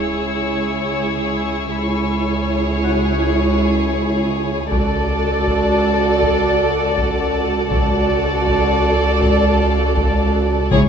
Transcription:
Already playing: C#2 E4 G#4 C#5 E5 C#6 E6, sub drop
1.71 C#2 E4 G#4 C#5 B5
2.35 F6
2.83 F#4 F#5
4.71 C#2 F#4 A4 D5 A5, taiko
5.48 F#5, taiko
6.23 taiko
6.97 taiko
7.71 C#2 F#4 A4 D5, taiko
8.47 taiko
9.11 F5
9.22 taiko
9.97 taiko
10.71 C#2 C#3 E4 G#4 C#5 C#6, taiko

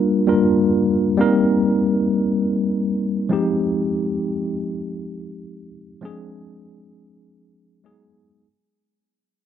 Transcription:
Already playing: G3 A#3 D4 F4 A#4
0.27 G3 A#3 D4 F4 A#4
1.17 G3 A#3 C4 D#4 A#4
3.29 F3 G#3 C4 D#4 G4
6.01 F3 G#3 C4 D4 G#4
7.84 F#3 G#3 B3 D#4 G#4

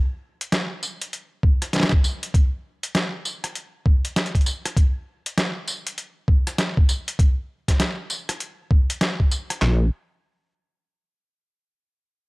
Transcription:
0.41 closed hi-hat
0.52 snare, closed hi-hat
0.83 tambourine
1.01 closed hi-hat
1.13 closed hi-hat
1.43 kick
1.62 cross-stick, closed hi-hat
1.73 snare, closed hi-hat
1.76 snare
1.80 snare
1.83 snare
1.89 kick, snare
2.04 tambourine
2.23 closed hi-hat
2.34 kick, closed hi-hat
2.83 closed hi-hat
2.95 snare, closed hi-hat
3.25 tambourine
3.44 cross-stick, closed hi-hat
3.55 closed hi-hat
3.86 kick
4.05 closed hi-hat
4.16 snare, closed hi-hat
4.26 closed hi-hat
4.35 kick, closed hi-hat
4.41 closed hi-hat
4.46 tambourine
4.66 cross-stick, closed hi-hat
4.77 kick, closed hi-hat
5.26 closed hi-hat
5.38 snare, closed hi-hat
5.67 tambourine
5.87 closed hi-hat
5.98 closed hi-hat
6.28 kick
6.47 cross-stick, closed hi-hat
6.58 snare, closed hi-hat
6.77 kick
6.89 tambourine
7.08 closed hi-hat
7.19 kick, closed hi-hat
7.68 kick, snare, closed hi-hat
7.80 snare, closed hi-hat
8.10 tambourine
8.29 cross-stick, closed hi-hat
8.40 closed hi-hat
8.71 kick
8.90 closed hi-hat
9.01 snare, closed hi-hat
9.20 kick
9.31 tambourine
9.50 cross-stick, closed hi-hat
9.62 A#1, snare, clap

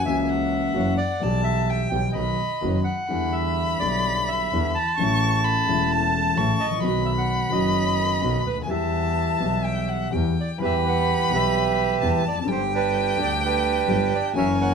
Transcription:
Already playing: G#5
0.03 C#2 C#3 E3 A#3 C#4 E5
0.07 F#4
0.29 F#5
0.74 F#1 F#2 E3 F#3 A#3 C#4 F#4
0.97 D5
1.20 B1 B2 E3 G3 B3 A5
1.24 G4
1.44 E5
1.70 G5
1.90 B1 B2 E3 G3 B3 G4 G5
2.13 B1 B2 D#3 F#3 B3 F#4 D#5
2.17 B5
2.61 F#1 F#2 D#3 F#3 B3 F#4
2.84 F#5
3.09 E2 D3 E3 G3 B3 B5
3.13 E4
3.32 E5
3.79 B1 B2 D3 G3 B3 D5
3.84 E4
4.28 E5
4.52 E2 D3 E3 G3 B3 E4
4.75 A5
4.97 A1 A2 C#3 E3 A3 E4 C#6
5.45 B5
5.66 E1 E2 C#3 E3 A3
5.70 E4
5.92 A5
6.36 A1 A2 C#3 E3 A3 E4 C#6
6.60 A1 D#5
6.66 G#1
6.71 A1
6.77 A#1 D#3
6.82 B1 B2 F#3 B3 F#4 B5
7.05 E5
7.18 F#5
7.49 F#1 F#2 D#3 F#3 B3 F#4 D#5
8.21 B1 B2 D#3 F#3 B3 F#4
8.46 D2 B4
8.51 C#2
8.58 D2 D#2
8.64 E3 G3 G#5
8.68 E2 E3 B3 G4 E5 A5
9.38 B1 B2 E3 G3 B3
9.42 G4
9.64 G5
9.88 F#5
10.11 E2 E3 G3 B3 G4 G5
10.40 D5
10.58 E2 E3 G3 B3 G4 B4 B5
10.62 G4 E5
10.86 B4 F#5
11.28 B1 B2 E3 G3 B3 G4
11.33 G4 B4 E5
12.01 E2 E3 G3 B3 G4 A5
12.25 F1 D5
12.31 E2
12.37 F2
12.41 F#2 D3
12.45 G1 G2 G3 B3 G4 G5
12.50 G4 C5
12.74 D4 G4 B4
13.16 D2 D3 G3 B3
13.20 G4 D5
13.44 D4 G4 B4
13.87 G1 G2 D3 G3 B3 G4
14.15 D5
14.33 F#1 F#2 E3 F#3 A#3 C#4 F#4 G#5
14.37 A#4 C#5 E5
14.61 A#4 C#5 F#5

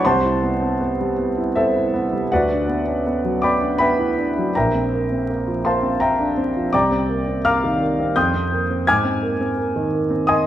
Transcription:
0.05 C2 C5 F#5 A5 C6
0.25 E4
0.43 B3
0.62 C4
0.81 B3
1.00 G3
1.18 B3
1.38 E4
1.56 B3 A4 C5 E5
1.76 E4
1.94 B3
2.13 G3
2.32 D2 F#4 B4 D5 F#5
2.52 D4
2.69 B3
2.87 C#4
3.07 B3
3.24 F#3
3.42 B3 D5 G5 B5 D6
3.61 D4
3.78 B3 B4 E5 G5 B5
3.99 E4
4.18 D4
4.38 F#3
4.55 A#1 A#4 E5 G5 A#5
4.75 C4
4.94 A#3
5.12 C4
5.30 A#3
5.48 F3
5.65 A#3 C5 F5 A5 C6
5.83 C4
6.00 A#3 A#4 E5 G5 A#5
6.20 D4
6.37 C4
6.57 F3
6.73 C2 D5 G5 A#5 D6
6.91 C4
7.09 A#3
7.28 C4
7.45 A#3 F5 A#5 D6 F6
7.64 D#3
7.81 A#3
7.99 C4
8.16 F2 G5 C6 D#6 G6
8.34 C4
8.52 A#3
8.70 C4
8.87 G#2 G#5 D6 F6 G#6
9.05 C4
9.23 A#3
9.41 C4
9.58 A#3
9.76 D#3
9.93 A#3
10.10 C4
10.27 A#3 D#5 G#5 C6 D#6

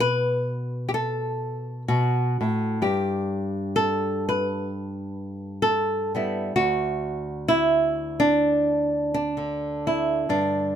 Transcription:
Already playing: B2 F#4
0.00 B4
0.89 G4
0.94 A4
1.88 B2 F#4
2.41 A2
2.82 G2 G4
3.76 A4
4.29 B4
5.62 A4
6.15 G3 B3 E4
6.56 D2 F#4
7.48 E4
8.20 D4
9.14 D4
9.37 D3
9.87 E4
10.29 G2 D4

